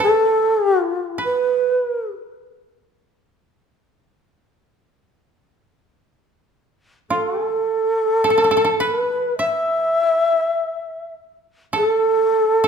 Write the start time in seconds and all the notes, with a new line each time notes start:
Already playing: B4
0.00 A4
0.80 F4
1.18 B4
1.24 B4
1.64 A#4
1.75 A4
7.10 F4 A4
7.46 A4
8.24 A4
8.30 A4
8.38 A4
8.44 A4
8.51 A4
8.57 A4
8.65 A4
8.80 B4
8.84 B4
9.39 E5
11.73 A4
12.64 A4